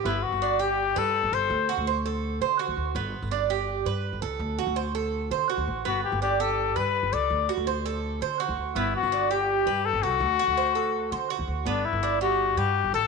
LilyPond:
<<
  \new Staff \with { instrumentName = "Cuban tres" } { \time 4/4 \key g \major \tempo 4 = 165 b4 d'8 g'4 b'4 a'8~ | a'8 fis'8 c''8 a'4 c''8 fis'4 | b4 d'8 g'4 b'4 a'8~ | a'8 fis'8 c''8 a'4 c''8 fis'4 |
b4 d'8 g'4 b'4 a'8~ | a'8 fis'8 c''8 a'4 c''8 fis'4 | b4 d'8 g'4 b'4 a'8~ | a'8 fis'8 c''8 a'4 c''8 fis'4 |
b4 d'8 g4 b'4 a'8 | }
  \new Staff \with { instrumentName = "Trumpet" } { \time 4/4 \key g \major e'8 fis'4 g'4 a'4 c''8~ | c''8 r2. r8 | r1 | r1 |
fis'8 g'8 g'8 a'4 b'4 d''8~ | d''8 r2. r8 | e'8 fis'4 g'4. a'8 fis'8~ | fis'2. r4 |
d'8 e'4 fis'4 g'4 a'8 | }
  \new Staff \with { instrumentName = "Upright bass" } { \clef bass \time 4/4 \key g \major g,,8 r16 g,,4.~ g,,16 g,8. g,,16 g,,8 | d,8 r16 d,4.~ d,16 d8. d,16 d,8 | g,,8 r16 g,,4.~ g,,16 g,8. g,,16 cis,8 | d,8 r16 d,4.~ d,16 d8. d,16 a,,8 |
g,,8 r16 g,,4.~ g,,16 g,8. g,,16 cis,8 | d,8 r16 d,4.~ d,16 d8. d,16 d,8 | g,,8 r16 g,,4.~ g,,16 g,8. g,,16 c,8 | d,8 r16 d,4.~ d,16 d8. d,16 d,8 |
g,,8 r16 g,,4.~ g,,16 g,8. g,,16 a,,8 | }
>>